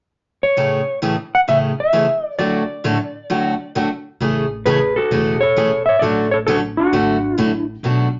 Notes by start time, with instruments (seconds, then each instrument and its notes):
0.43 electric slide guitar C#5
0.57 steel-string acoustic guitar A2 C#3 E3 A3 C#4 G#4
1.02 steel-string acoustic guitar A2 C#3 E3 A3 C#4 G#4
1.35 electric slide guitar F#5
1.48 steel-string acoustic guitar A2 C#3 E3 A3 C#4 G#4, electric slide guitar E5
1.80 electric slide guitar E5
1.93 steel-string acoustic guitar A2 C#3 E3 A3 C#4 G#4
2.26 electric slide guitar D5
2.38 steel-string acoustic guitar A2 D3 F#3 A3 C#4 F#4, electric slide guitar D5
2.84 steel-string acoustic guitar A2 D3 F#3 A3 C#4 F#4
3.30 steel-string acoustic guitar A2 D3 F#3 A3 C#4 F#4
3.75 steel-string acoustic guitar A2 D3 F#3 A3 C#4 F#4
4.20 upright bass A1, steel-string acoustic guitar C#3 E3 A3 C#4 G#4
4.66 steel-string acoustic guitar C#3 E3 A3 C#4 G#4, electric slide guitar G#4 B4
4.96 electric slide guitar F#4 A4
5.11 upright bass E1, steel-string acoustic guitar C#3 E3 A3 C#4 G#4
5.41 electric slide guitar A4 C#5
5.57 steel-string acoustic guitar C#3 E3 A3 C#4 G#4
5.86 electric slide guitar C#5 E5
5.99 upright bass A1, steel-string acoustic guitar D3 F#3 A3 C#4 F#4, electric slide guitar A4 D5
6.31 electric slide guitar A4 C#5
6.47 steel-string acoustic guitar D3 F#3 A3 C#4 F#4, electric slide guitar F#4 A4
6.77 electric slide guitar D4 F#4
6.93 upright bass G#1, steel-string acoustic guitar D3 F#3 A3 C#4 F#4
7.38 upright bass A1, steel-string acoustic guitar D3 F#3 A3 C#4 F#4, electric slide guitar E4
7.83 upright bass B1, steel-string acoustic guitar B2 F#3 A3 D4 F#4